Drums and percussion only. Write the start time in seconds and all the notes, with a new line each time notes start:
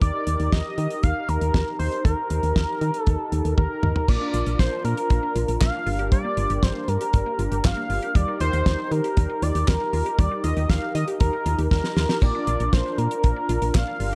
0.02 kick, closed hi-hat
0.27 closed hi-hat
0.40 closed hi-hat
0.52 kick, snare
0.78 closed hi-hat
0.90 closed hi-hat
1.03 kick, closed hi-hat
1.29 closed hi-hat
1.41 closed hi-hat
1.54 kick, snare
1.80 open hi-hat
1.92 closed hi-hat
2.05 kick, closed hi-hat
2.30 closed hi-hat
2.43 closed hi-hat
2.56 kick, snare
2.81 closed hi-hat
2.94 closed hi-hat
3.07 kick, closed hi-hat
3.32 closed hi-hat
3.45 closed hi-hat
3.58 kick, high tom
3.83 mid tom
3.96 floor tom
4.08 kick, crash
4.34 closed hi-hat
4.46 closed hi-hat
4.59 kick, snare, closed hi-hat
4.85 closed hi-hat
4.97 closed hi-hat
5.10 kick, closed hi-hat
5.36 closed hi-hat
5.48 closed hi-hat
5.61 kick, snare, clap, closed hi-hat
5.87 open hi-hat
5.99 closed hi-hat
6.12 kick, closed hi-hat
6.37 closed hi-hat
6.50 closed hi-hat
6.63 kick, snare, closed hi-hat
6.88 closed hi-hat
7.01 closed hi-hat
7.13 kick, closed hi-hat
7.39 closed hi-hat
7.52 closed hi-hat
7.65 kick, snare, clap, closed hi-hat
7.90 open hi-hat
8.03 closed hi-hat
8.15 kick, closed hi-hat
8.40 closed hi-hat
8.53 closed hi-hat
8.66 kick, snare, closed hi-hat
8.91 closed hi-hat
9.04 closed hi-hat
9.17 kick, closed hi-hat
9.42 closed hi-hat
9.55 closed hi-hat
9.68 kick, snare, clap, closed hi-hat
9.93 open hi-hat
10.06 closed hi-hat
10.19 kick, closed hi-hat
10.44 closed hi-hat
10.57 closed hi-hat
10.69 kick, snare, closed hi-hat
10.95 closed hi-hat
11.08 closed hi-hat
11.20 kick, closed hi-hat
11.46 closed hi-hat
11.59 closed hi-hat
11.71 kick, snare
11.84 snare
11.97 snare
12.09 snare
12.22 kick, splash
12.47 closed hi-hat
12.60 closed hi-hat
12.73 kick, snare, closed hi-hat
12.98 closed hi-hat
13.11 closed hi-hat
13.24 kick, closed hi-hat
13.49 closed hi-hat
13.62 closed hi-hat
13.75 kick, snare, clap, closed hi-hat
14.00 open hi-hat